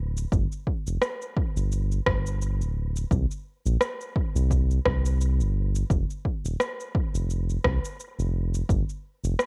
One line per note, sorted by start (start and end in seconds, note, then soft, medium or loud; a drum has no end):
0.00 0.26 D1 loud
0.17 shaker medium
0.32 0.47 G1 loud
0.32 kick loud
0.32 shaker medium
0.52 shaker soft
0.67 kick medium
0.87 0.98 F1 loud
0.87 shaker medium
1.02 cross-stick medium
1.02 shaker medium
1.22 shaker soft
1.37 kick loud
1.56 2.00 G1 loud
1.56 shaker medium
1.72 shaker medium
1.92 shaker soft
2.06 2.62 G1 medium
2.06 kick loud
2.06 cross-stick medium
2.27 shaker medium
2.42 shaker medium
2.61 3.05 D1 loud
2.61 shaker soft
2.96 shaker medium
3.11 3.26 C2 loud
3.11 kick loud
3.11 shaker medium
3.31 shaker soft
3.66 3.77 A#1 medium
3.66 shaker medium
3.81 cross-stick medium
3.81 shaker medium
4.01 shaker soft
4.16 kick loud
4.35 4.79 C2 loud
4.35 shaker medium
4.51 kick medium
4.51 shaker medium
4.71 shaker soft
4.85 5.42 C2 medium
4.85 kick loud
4.85 cross-stick medium
5.06 shaker medium
5.21 shaker medium
5.40 5.84 G1 loud
5.40 shaker soft
5.76 shaker medium
5.90 6.05 F1 medium
5.90 kick loud
5.90 shaker medium
6.10 shaker soft
6.25 kick medium
6.44 6.56 D#1 medium
6.44 shaker medium
6.60 cross-stick medium
6.60 shaker medium
6.80 shaker soft
6.95 kick loud
7.14 7.58 F1 medium
7.14 shaker medium
7.30 shaker medium
7.50 shaker soft
7.64 7.79 C2 medium
7.64 kick loud
7.64 cross-stick medium
7.85 shaker medium
8.00 shaker medium
8.19 8.63 F1 loud
8.19 shaker soft
8.54 shaker medium
8.69 8.84 G1 medium
8.69 kick loud
8.69 shaker medium
8.89 shaker soft
9.24 9.35 F1 loud
9.24 shaker medium
9.39 cross-stick medium
9.39 shaker medium